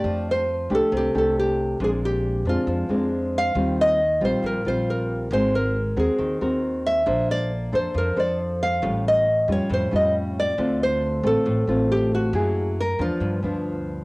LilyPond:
<<
  \new Staff \with { instrumentName = "Nylon-string guitar" } { \time 4/4 \key f \major \tempo 4 = 137 d''8 c''4 a'8 g'8 a'8 g'4 | aes'8 g'4 f'4. r8 f''8~ | f''8 ees''4 c''8 bes'8 c''8 bes'4 | c''8 bes'4 aes'4. r8 e''8~ |
e''8 d''4 c''8 bes'8 d''8 r8 f''8~ | f''8 ees''4 cis''8 c''8 ees''8 r8 d''8~ | d''8 c''4 a'4. g'8 ges'8~ | ges'4 bes'8 f'2 r8 | }
  \new Staff \with { instrumentName = "Nylon-string guitar" } { \time 4/4 \key f \major << { <a d' g'>4 r8 <a d' g'>4 <a d' g'>4. | <aes c' d'>4. <aes c' d'>4 <aes c' d'>4. | <g c' f'>4 r8 <g c' f'>4 <g c' f'>4. | <c' ges' bes'>4 r8 <c' ges' bes'>4 <c' ges' bes'>4. |
<d' a' c''>4 r8 <d' a' c''>4 <d' a' c''>4. | <g cis' eis'>4 r8 <g cis' eis'>4 <g cis' eis'>4. | <a c' f'>4. <a c' f'>4 <a c' f'>4. | <bes fes' aes'>4 r8 <f b d'>4 <f b d'>4. | } \\ { f2 c2 | bes,2 f2 | ees2 bes,2 | aes2 ees2 |
bes2 f2 | a,2 a,2 | d2 a,2 | ges2 g,2 | } >> }
  \new Staff \with { instrumentName = "Upright bass" } { \clef bass \time 4/4 \key f \major f,4. c,16 r16 c,8 c,4. | bes,,4. f,16 r16 f,8 f,4. | ees,4. bes,,16 r16 bes,,8 bes,,4. | aes,,4. ees,16 r16 ees,8 ees,4. |
bes,,4. f,16 r16 f,8 f,4. | a,,4. eis,16 r16 eis,8 eis,4. | d,4. a,,16 r16 a,,8 a,,4. | ges,4. fes,16 r16 g,8 d,4. | }
>>